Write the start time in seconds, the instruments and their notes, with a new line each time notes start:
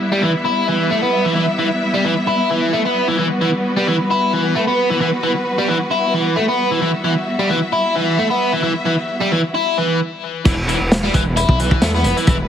Already playing: string section G3 B3 E4 E5
0.12 overdriven electric guitar G3
0.22 overdriven electric guitar E3
0.45 overdriven electric guitar E4
0.68 overdriven electric guitar E3
0.91 overdriven electric guitar A3
1.03 overdriven electric guitar B3
1.25 overdriven electric guitar E3
1.36 overdriven electric guitar E3
1.59 overdriven electric guitar E3
1.94 overdriven electric guitar G3
2.05 overdriven electric guitar E3
2.28 overdriven electric guitar E4
2.50 overdriven electric guitar E3
2.73 overdriven electric guitar A3
2.86 overdriven electric guitar B3
3.08 overdriven electric guitar E3
3.19 overdriven electric guitar E3, string section F#4 B4
3.41 overdriven electric guitar E3
3.76 overdriven electric guitar G3
3.87 overdriven electric guitar E3
4.10 overdriven electric guitar E4
4.33 overdriven electric guitar E3
4.55 overdriven electric guitar A3
4.67 overdriven electric guitar B3
4.90 overdriven electric guitar E3
5.01 overdriven electric guitar E3
5.24 overdriven electric guitar E3
5.58 overdriven electric guitar G3
5.69 overdriven electric guitar E3
5.91 overdriven electric guitar E4
6.14 overdriven electric guitar E3
6.36 overdriven electric guitar A3
6.48 overdriven electric guitar B3
6.71 overdriven electric guitar E3
6.82 overdriven electric guitar E3, string section E5
7.04 overdriven electric guitar E3
7.39 overdriven electric guitar G3
7.50 overdriven electric guitar E3
7.72 overdriven electric guitar E4
7.95 overdriven electric guitar E3
8.18 overdriven electric guitar A3
8.30 overdriven electric guitar B3
8.53 overdriven electric guitar E3
8.63 overdriven electric guitar E3
8.86 overdriven electric guitar E3
9.21 overdriven electric guitar G3
9.32 overdriven electric guitar E3
9.55 overdriven electric guitar E4
9.78 overdriven electric guitar E3
10.45 detuned saw bass E1, overdriven electric guitar E3, string section G3 B3 E4 B4, kick, closed hi-hat, crash
10.69 overdriven electric guitar E3, closed hi-hat
10.80 detuned saw bass E1
10.92 snare, closed hi-hat
11.03 overdriven electric guitar G3, snare
11.14 detuned saw bass E1, overdriven electric guitar E3, kick, closed hi-hat
11.36 overdriven electric guitar E4, closed hi-hat
11.49 detuned saw bass B1, kick
11.59 overdriven electric guitar E3, closed hi-hat
11.71 kick
11.82 detuned saw bass E2, overdriven electric guitar A3, snare, closed hi-hat
11.95 overdriven electric guitar B3, snare
12.04 detuned saw bass E1, closed hi-hat
12.17 overdriven electric guitar E3, closed hi-hat
12.27 detuned saw bass E1, overdriven electric guitar E3, kick, closed hi-hat